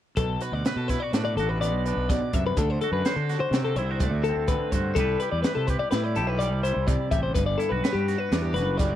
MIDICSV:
0, 0, Header, 1, 5, 480
1, 0, Start_track
1, 0, Tempo, 479616
1, 161, Time_signature, 5, 2, 24, 8
1, 8962, End_track
2, 0, Start_track
2, 0, Title_t, "Clean electric guitar"
2, 0, Program_c, 0, 27
2, 169, Note_on_c, 0, 69, 86
2, 417, Note_off_c, 0, 69, 0
2, 417, Note_on_c, 0, 71, 69
2, 533, Note_off_c, 0, 71, 0
2, 533, Note_on_c, 0, 74, 57
2, 653, Note_off_c, 0, 74, 0
2, 653, Note_on_c, 0, 71, 81
2, 769, Note_off_c, 0, 71, 0
2, 769, Note_on_c, 0, 69, 61
2, 882, Note_off_c, 0, 69, 0
2, 882, Note_on_c, 0, 71, 71
2, 1002, Note_off_c, 0, 71, 0
2, 1002, Note_on_c, 0, 74, 70
2, 1126, Note_off_c, 0, 74, 0
2, 1126, Note_on_c, 0, 71, 68
2, 1244, Note_off_c, 0, 71, 0
2, 1249, Note_on_c, 0, 74, 64
2, 1365, Note_off_c, 0, 74, 0
2, 1372, Note_on_c, 0, 69, 73
2, 1491, Note_off_c, 0, 69, 0
2, 1491, Note_on_c, 0, 71, 65
2, 1606, Note_off_c, 0, 71, 0
2, 1611, Note_on_c, 0, 74, 75
2, 1859, Note_off_c, 0, 74, 0
2, 1859, Note_on_c, 0, 71, 64
2, 2094, Note_off_c, 0, 71, 0
2, 2094, Note_on_c, 0, 74, 76
2, 2342, Note_off_c, 0, 74, 0
2, 2342, Note_on_c, 0, 76, 67
2, 2452, Note_off_c, 0, 76, 0
2, 2468, Note_on_c, 0, 71, 73
2, 2585, Note_off_c, 0, 71, 0
2, 2585, Note_on_c, 0, 69, 89
2, 2702, Note_off_c, 0, 69, 0
2, 2702, Note_on_c, 0, 72, 68
2, 2812, Note_off_c, 0, 72, 0
2, 2817, Note_on_c, 0, 69, 67
2, 2926, Note_off_c, 0, 69, 0
2, 2930, Note_on_c, 0, 71, 57
2, 3166, Note_off_c, 0, 71, 0
2, 3166, Note_on_c, 0, 69, 66
2, 3401, Note_off_c, 0, 69, 0
2, 3405, Note_on_c, 0, 72, 74
2, 3643, Note_off_c, 0, 72, 0
2, 3648, Note_on_c, 0, 69, 70
2, 3767, Note_off_c, 0, 69, 0
2, 3767, Note_on_c, 0, 72, 75
2, 3999, Note_off_c, 0, 72, 0
2, 3999, Note_on_c, 0, 74, 78
2, 4240, Note_off_c, 0, 74, 0
2, 4241, Note_on_c, 0, 69, 67
2, 4481, Note_off_c, 0, 69, 0
2, 4484, Note_on_c, 0, 71, 71
2, 4720, Note_off_c, 0, 71, 0
2, 4720, Note_on_c, 0, 72, 69
2, 4954, Note_on_c, 0, 69, 85
2, 4960, Note_off_c, 0, 72, 0
2, 5197, Note_off_c, 0, 69, 0
2, 5201, Note_on_c, 0, 71, 66
2, 5316, Note_off_c, 0, 71, 0
2, 5320, Note_on_c, 0, 74, 60
2, 5426, Note_off_c, 0, 74, 0
2, 5430, Note_on_c, 0, 71, 70
2, 5551, Note_off_c, 0, 71, 0
2, 5555, Note_on_c, 0, 69, 64
2, 5677, Note_off_c, 0, 69, 0
2, 5677, Note_on_c, 0, 71, 70
2, 5794, Note_off_c, 0, 71, 0
2, 5798, Note_on_c, 0, 74, 73
2, 5909, Note_off_c, 0, 74, 0
2, 5913, Note_on_c, 0, 71, 72
2, 6043, Note_off_c, 0, 71, 0
2, 6043, Note_on_c, 0, 74, 63
2, 6161, Note_off_c, 0, 74, 0
2, 6167, Note_on_c, 0, 69, 79
2, 6278, Note_off_c, 0, 69, 0
2, 6278, Note_on_c, 0, 71, 74
2, 6393, Note_on_c, 0, 74, 73
2, 6399, Note_off_c, 0, 71, 0
2, 6635, Note_off_c, 0, 74, 0
2, 6639, Note_on_c, 0, 72, 63
2, 6873, Note_off_c, 0, 72, 0
2, 6873, Note_on_c, 0, 74, 62
2, 7114, Note_off_c, 0, 74, 0
2, 7118, Note_on_c, 0, 76, 74
2, 7229, Note_off_c, 0, 76, 0
2, 7233, Note_on_c, 0, 72, 67
2, 7347, Note_off_c, 0, 72, 0
2, 7351, Note_on_c, 0, 71, 88
2, 7464, Note_off_c, 0, 71, 0
2, 7468, Note_on_c, 0, 74, 65
2, 7583, Note_on_c, 0, 69, 62
2, 7593, Note_off_c, 0, 74, 0
2, 7699, Note_on_c, 0, 71, 62
2, 7711, Note_off_c, 0, 69, 0
2, 7933, Note_on_c, 0, 67, 67
2, 7949, Note_off_c, 0, 71, 0
2, 8189, Note_off_c, 0, 67, 0
2, 8189, Note_on_c, 0, 71, 69
2, 8429, Note_off_c, 0, 71, 0
2, 8429, Note_on_c, 0, 67, 61
2, 8547, Note_on_c, 0, 71, 73
2, 8553, Note_off_c, 0, 67, 0
2, 8781, Note_off_c, 0, 71, 0
2, 8781, Note_on_c, 0, 74, 83
2, 8962, Note_off_c, 0, 74, 0
2, 8962, End_track
3, 0, Start_track
3, 0, Title_t, "Clean electric guitar"
3, 0, Program_c, 1, 27
3, 173, Note_on_c, 1, 47, 63
3, 415, Note_on_c, 1, 66, 46
3, 669, Note_on_c, 1, 71, 47
3, 895, Note_off_c, 1, 66, 0
3, 899, Note_on_c, 1, 64, 57
3, 1023, Note_off_c, 1, 64, 0
3, 1023, Note_on_c, 1, 66, 47
3, 1138, Note_on_c, 1, 62, 49
3, 1372, Note_off_c, 1, 66, 0
3, 1397, Note_on_c, 1, 66, 56
3, 1613, Note_on_c, 1, 59, 55
3, 1850, Note_off_c, 1, 62, 0
3, 1876, Note_on_c, 1, 62, 55
3, 2088, Note_off_c, 1, 47, 0
3, 2104, Note_on_c, 1, 47, 54
3, 2333, Note_off_c, 1, 47, 0
3, 2342, Note_on_c, 1, 48, 56
3, 2538, Note_off_c, 1, 59, 0
3, 2547, Note_off_c, 1, 71, 0
3, 2550, Note_off_c, 1, 62, 0
3, 2551, Note_off_c, 1, 66, 0
3, 2572, Note_off_c, 1, 48, 0
3, 2580, Note_on_c, 1, 50, 64
3, 2838, Note_on_c, 1, 66, 53
3, 3060, Note_on_c, 1, 72, 57
3, 3287, Note_off_c, 1, 66, 0
3, 3299, Note_on_c, 1, 66, 58
3, 3542, Note_on_c, 1, 60, 55
3, 3770, Note_off_c, 1, 66, 0
3, 3789, Note_on_c, 1, 64, 59
3, 3909, Note_off_c, 1, 64, 0
3, 3909, Note_on_c, 1, 66, 50
3, 4033, Note_on_c, 1, 57, 55
3, 4251, Note_off_c, 1, 60, 0
3, 4292, Note_on_c, 1, 60, 54
3, 4490, Note_off_c, 1, 50, 0
3, 4518, Note_on_c, 1, 50, 67
3, 4734, Note_off_c, 1, 66, 0
3, 4752, Note_on_c, 1, 66, 55
3, 4941, Note_off_c, 1, 72, 0
3, 4948, Note_off_c, 1, 57, 0
3, 4948, Note_off_c, 1, 66, 0
3, 4978, Note_on_c, 1, 55, 57
3, 4979, Note_off_c, 1, 50, 0
3, 4979, Note_off_c, 1, 60, 0
3, 4983, Note_on_c, 1, 64, 53
3, 4995, Note_on_c, 1, 67, 53
3, 5002, Note_on_c, 1, 71, 62
3, 5222, Note_off_c, 1, 67, 0
3, 5226, Note_on_c, 1, 67, 57
3, 5467, Note_off_c, 1, 71, 0
3, 5471, Note_on_c, 1, 71, 50
3, 5701, Note_off_c, 1, 67, 0
3, 5705, Note_on_c, 1, 67, 61
3, 5931, Note_off_c, 1, 64, 0
3, 5947, Note_on_c, 1, 64, 57
3, 6173, Note_off_c, 1, 67, 0
3, 6177, Note_on_c, 1, 67, 55
3, 6393, Note_off_c, 1, 55, 0
3, 6405, Note_on_c, 1, 55, 61
3, 6626, Note_off_c, 1, 64, 0
3, 6638, Note_on_c, 1, 64, 50
3, 6878, Note_on_c, 1, 48, 61
3, 7119, Note_off_c, 1, 67, 0
3, 7131, Note_on_c, 1, 67, 50
3, 7329, Note_off_c, 1, 64, 0
3, 7330, Note_off_c, 1, 48, 0
3, 7336, Note_off_c, 1, 67, 0
3, 7348, Note_on_c, 1, 43, 64
3, 7598, Note_on_c, 1, 64, 57
3, 7720, Note_off_c, 1, 64, 0
3, 7720, Note_on_c, 1, 66, 43
3, 7839, Note_off_c, 1, 71, 0
3, 7843, Note_on_c, 1, 71, 55
3, 8079, Note_off_c, 1, 66, 0
3, 8089, Note_on_c, 1, 66, 55
3, 8326, Note_on_c, 1, 62, 49
3, 8561, Note_off_c, 1, 66, 0
3, 8565, Note_on_c, 1, 66, 51
3, 8798, Note_off_c, 1, 55, 0
3, 8810, Note_on_c, 1, 55, 65
3, 8962, Note_off_c, 1, 43, 0
3, 8962, Note_off_c, 1, 55, 0
3, 8962, Note_off_c, 1, 62, 0
3, 8962, Note_off_c, 1, 66, 0
3, 8962, Note_off_c, 1, 71, 0
3, 8962, End_track
4, 0, Start_track
4, 0, Title_t, "Fingered electric bass"
4, 0, Program_c, 2, 33
4, 169, Note_on_c, 2, 35, 100
4, 361, Note_off_c, 2, 35, 0
4, 520, Note_on_c, 2, 38, 89
4, 618, Note_off_c, 2, 38, 0
4, 761, Note_on_c, 2, 47, 81
4, 956, Note_off_c, 2, 47, 0
4, 1128, Note_on_c, 2, 45, 72
4, 1364, Note_on_c, 2, 33, 80
4, 1379, Note_off_c, 2, 45, 0
4, 1735, Note_off_c, 2, 33, 0
4, 1735, Note_on_c, 2, 35, 80
4, 1924, Note_off_c, 2, 35, 0
4, 1966, Note_on_c, 2, 35, 76
4, 2159, Note_off_c, 2, 35, 0
4, 2339, Note_on_c, 2, 42, 67
4, 2527, Note_off_c, 2, 42, 0
4, 2569, Note_on_c, 2, 38, 94
4, 2761, Note_off_c, 2, 38, 0
4, 2919, Note_on_c, 2, 42, 95
4, 3017, Note_off_c, 2, 42, 0
4, 3164, Note_on_c, 2, 50, 87
4, 3358, Note_off_c, 2, 50, 0
4, 3512, Note_on_c, 2, 48, 81
4, 3761, Note_on_c, 2, 36, 80
4, 3776, Note_off_c, 2, 48, 0
4, 4119, Note_off_c, 2, 36, 0
4, 4119, Note_on_c, 2, 38, 75
4, 4315, Note_off_c, 2, 38, 0
4, 4360, Note_on_c, 2, 38, 69
4, 4555, Note_off_c, 2, 38, 0
4, 4728, Note_on_c, 2, 43, 73
4, 4920, Note_off_c, 2, 43, 0
4, 4970, Note_on_c, 2, 36, 104
4, 5161, Note_off_c, 2, 36, 0
4, 5327, Note_on_c, 2, 40, 89
4, 5422, Note_off_c, 2, 40, 0
4, 5567, Note_on_c, 2, 48, 76
4, 5759, Note_off_c, 2, 48, 0
4, 5928, Note_on_c, 2, 45, 79
4, 6175, Note_on_c, 2, 35, 73
4, 6190, Note_off_c, 2, 45, 0
4, 6525, Note_off_c, 2, 35, 0
4, 6525, Note_on_c, 2, 36, 83
4, 6717, Note_off_c, 2, 36, 0
4, 6768, Note_on_c, 2, 36, 79
4, 6959, Note_off_c, 2, 36, 0
4, 7119, Note_on_c, 2, 33, 72
4, 7314, Note_off_c, 2, 33, 0
4, 7361, Note_on_c, 2, 31, 98
4, 7555, Note_off_c, 2, 31, 0
4, 7720, Note_on_c, 2, 35, 97
4, 7817, Note_off_c, 2, 35, 0
4, 7951, Note_on_c, 2, 43, 83
4, 8149, Note_off_c, 2, 43, 0
4, 8321, Note_on_c, 2, 40, 80
4, 8559, Note_on_c, 2, 30, 81
4, 8574, Note_off_c, 2, 40, 0
4, 8926, Note_off_c, 2, 30, 0
4, 8926, Note_on_c, 2, 31, 79
4, 8962, Note_off_c, 2, 31, 0
4, 8962, End_track
5, 0, Start_track
5, 0, Title_t, "Drums"
5, 167, Note_on_c, 9, 42, 74
5, 170, Note_on_c, 9, 36, 104
5, 267, Note_off_c, 9, 42, 0
5, 270, Note_off_c, 9, 36, 0
5, 406, Note_on_c, 9, 42, 62
5, 506, Note_off_c, 9, 42, 0
5, 649, Note_on_c, 9, 42, 65
5, 657, Note_on_c, 9, 38, 97
5, 749, Note_off_c, 9, 42, 0
5, 758, Note_off_c, 9, 38, 0
5, 894, Note_on_c, 9, 36, 66
5, 894, Note_on_c, 9, 42, 62
5, 902, Note_on_c, 9, 38, 33
5, 994, Note_off_c, 9, 36, 0
5, 994, Note_off_c, 9, 42, 0
5, 1002, Note_off_c, 9, 38, 0
5, 1134, Note_on_c, 9, 42, 83
5, 1142, Note_on_c, 9, 38, 104
5, 1234, Note_off_c, 9, 42, 0
5, 1242, Note_off_c, 9, 38, 0
5, 1380, Note_on_c, 9, 42, 63
5, 1480, Note_off_c, 9, 42, 0
5, 1623, Note_on_c, 9, 42, 78
5, 1723, Note_off_c, 9, 42, 0
5, 1858, Note_on_c, 9, 42, 59
5, 1958, Note_off_c, 9, 42, 0
5, 2098, Note_on_c, 9, 36, 93
5, 2099, Note_on_c, 9, 42, 76
5, 2107, Note_on_c, 9, 38, 30
5, 2198, Note_off_c, 9, 36, 0
5, 2199, Note_off_c, 9, 42, 0
5, 2207, Note_off_c, 9, 38, 0
5, 2334, Note_on_c, 9, 42, 62
5, 2337, Note_on_c, 9, 36, 75
5, 2435, Note_off_c, 9, 42, 0
5, 2437, Note_off_c, 9, 36, 0
5, 2570, Note_on_c, 9, 42, 80
5, 2574, Note_on_c, 9, 36, 91
5, 2670, Note_off_c, 9, 42, 0
5, 2674, Note_off_c, 9, 36, 0
5, 2814, Note_on_c, 9, 42, 48
5, 2914, Note_off_c, 9, 42, 0
5, 3052, Note_on_c, 9, 42, 69
5, 3060, Note_on_c, 9, 38, 78
5, 3152, Note_off_c, 9, 42, 0
5, 3160, Note_off_c, 9, 38, 0
5, 3296, Note_on_c, 9, 42, 58
5, 3304, Note_on_c, 9, 38, 32
5, 3396, Note_off_c, 9, 42, 0
5, 3404, Note_off_c, 9, 38, 0
5, 3531, Note_on_c, 9, 42, 64
5, 3539, Note_on_c, 9, 38, 99
5, 3631, Note_off_c, 9, 42, 0
5, 3639, Note_off_c, 9, 38, 0
5, 3765, Note_on_c, 9, 42, 57
5, 3865, Note_off_c, 9, 42, 0
5, 4005, Note_on_c, 9, 42, 79
5, 4007, Note_on_c, 9, 36, 108
5, 4105, Note_off_c, 9, 42, 0
5, 4107, Note_off_c, 9, 36, 0
5, 4245, Note_on_c, 9, 42, 60
5, 4346, Note_off_c, 9, 42, 0
5, 4481, Note_on_c, 9, 42, 74
5, 4486, Note_on_c, 9, 36, 101
5, 4581, Note_off_c, 9, 42, 0
5, 4586, Note_off_c, 9, 36, 0
5, 4725, Note_on_c, 9, 36, 70
5, 4725, Note_on_c, 9, 42, 68
5, 4825, Note_off_c, 9, 42, 0
5, 4826, Note_off_c, 9, 36, 0
5, 4964, Note_on_c, 9, 42, 78
5, 4965, Note_on_c, 9, 36, 113
5, 5064, Note_off_c, 9, 42, 0
5, 5066, Note_off_c, 9, 36, 0
5, 5202, Note_on_c, 9, 42, 59
5, 5302, Note_off_c, 9, 42, 0
5, 5440, Note_on_c, 9, 42, 67
5, 5448, Note_on_c, 9, 38, 97
5, 5540, Note_off_c, 9, 42, 0
5, 5548, Note_off_c, 9, 38, 0
5, 5683, Note_on_c, 9, 36, 70
5, 5683, Note_on_c, 9, 42, 58
5, 5783, Note_off_c, 9, 36, 0
5, 5783, Note_off_c, 9, 42, 0
5, 5919, Note_on_c, 9, 42, 75
5, 5927, Note_on_c, 9, 38, 104
5, 6019, Note_off_c, 9, 42, 0
5, 6027, Note_off_c, 9, 38, 0
5, 6162, Note_on_c, 9, 42, 65
5, 6262, Note_off_c, 9, 42, 0
5, 6406, Note_on_c, 9, 42, 81
5, 6506, Note_off_c, 9, 42, 0
5, 6649, Note_on_c, 9, 42, 58
5, 6749, Note_off_c, 9, 42, 0
5, 6882, Note_on_c, 9, 36, 91
5, 6884, Note_on_c, 9, 42, 72
5, 6982, Note_off_c, 9, 36, 0
5, 6984, Note_off_c, 9, 42, 0
5, 7120, Note_on_c, 9, 42, 64
5, 7121, Note_on_c, 9, 36, 83
5, 7220, Note_off_c, 9, 42, 0
5, 7221, Note_off_c, 9, 36, 0
5, 7357, Note_on_c, 9, 42, 79
5, 7361, Note_on_c, 9, 36, 95
5, 7457, Note_off_c, 9, 42, 0
5, 7461, Note_off_c, 9, 36, 0
5, 7605, Note_on_c, 9, 42, 57
5, 7705, Note_off_c, 9, 42, 0
5, 7847, Note_on_c, 9, 42, 62
5, 7855, Note_on_c, 9, 38, 95
5, 7947, Note_off_c, 9, 42, 0
5, 7955, Note_off_c, 9, 38, 0
5, 8089, Note_on_c, 9, 42, 58
5, 8097, Note_on_c, 9, 38, 31
5, 8189, Note_off_c, 9, 42, 0
5, 8197, Note_off_c, 9, 38, 0
5, 8325, Note_on_c, 9, 42, 72
5, 8333, Note_on_c, 9, 38, 105
5, 8425, Note_off_c, 9, 42, 0
5, 8433, Note_off_c, 9, 38, 0
5, 8567, Note_on_c, 9, 42, 59
5, 8575, Note_on_c, 9, 38, 33
5, 8667, Note_off_c, 9, 42, 0
5, 8675, Note_off_c, 9, 38, 0
5, 8798, Note_on_c, 9, 42, 77
5, 8801, Note_on_c, 9, 36, 97
5, 8806, Note_on_c, 9, 38, 34
5, 8899, Note_off_c, 9, 42, 0
5, 8901, Note_off_c, 9, 36, 0
5, 8907, Note_off_c, 9, 38, 0
5, 8962, End_track
0, 0, End_of_file